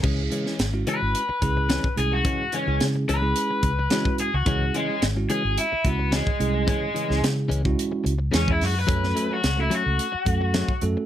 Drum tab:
CC |x---------------|----------------|----------------|----------------|
HH |--x-x-x-x-x-x-x-|x-x-x-x-x-x-x-x-|x-x-x-x-x-x-x-x-|x-x-x-x-x-x-x-o-|
SD |---oo-------o---|----o-------o---|----o-------o---|---oo-------o-o-|
BD |o---------o--o--|o---------o--o--|o---------o--o--|o------o-----o--|

CC |----------------|
HH |x-x-x-x-x-x-x-x-|
SD |-o--o-------o---|
BD |o---------o--o--|